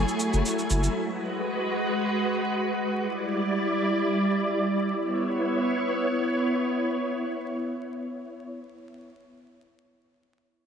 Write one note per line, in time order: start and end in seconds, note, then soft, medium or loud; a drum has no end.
0.00 0.93 F#3 medium
0.00 0.93 A3 medium
0.00 0.91 E4 medium
0.00 0.96 G#4 medium
0.00 0.96 G#5 medium
0.08 cabasa soft
0.20 cabasa medium
0.33 0.42 F#1 medium
0.33 cabasa soft
0.46 cabasa medium
0.59 cabasa soft
0.70 0.88 F#1 medium
0.70 cabasa medium
0.83 cabasa soft
0.95 2.93 G#3 medium
0.95 2.93 F#4 medium
0.95 2.93 B4 medium
2.95 4.93 G3 medium
2.95 4.93 E4 medium
2.95 4.93 D5 medium
4.95 8.45 B3 medium
4.95 8.45 E4 medium
4.95 8.45 C#5 medium